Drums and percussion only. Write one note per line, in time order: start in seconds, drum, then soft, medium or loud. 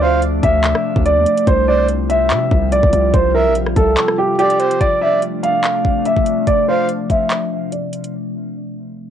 0.22 closed hi-hat medium
0.43 kick medium
0.43 closed hi-hat medium
0.64 clap loud
0.64 closed hi-hat medium
0.75 cross-stick loud
0.96 kick loud
1.06 closed hi-hat medium
1.26 closed hi-hat medium
1.37 closed hi-hat medium
1.47 kick loud
1.47 closed hi-hat medium
1.89 closed hi-hat medium
2.10 closed hi-hat medium
2.30 clap loud
2.30 closed hi-hat medium
2.51 kick loud
2.72 closed hi-hat medium
2.83 kick medium
2.93 closed hi-hat medium
3.14 kick loud
3.14 closed hi-hat medium
3.55 closed hi-hat medium
3.67 cross-stick medium
3.76 kick medium
3.76 closed hi-hat medium
3.97 clap loud
3.97 closed hi-hat medium
4.08 cross-stick loud
4.39 closed hi-hat soft
4.50 closed hi-hat medium
4.60 closed hi-hat medium
4.71 closed hi-hat medium
4.81 kick loud
4.81 closed hi-hat medium
5.22 closed hi-hat medium
5.43 closed hi-hat medium
5.64 clap loud
5.64 closed hi-hat medium
5.85 kick loud
6.06 closed hi-hat medium
6.17 kick medium
6.26 closed hi-hat medium
6.47 kick loud
6.47 closed hi-hat medium
6.89 closed hi-hat medium
7.10 kick medium
7.10 closed hi-hat medium
7.30 clap loud
7.30 closed hi-hat medium
7.72 closed hi-hat medium
7.93 closed hi-hat medium
8.04 closed hi-hat medium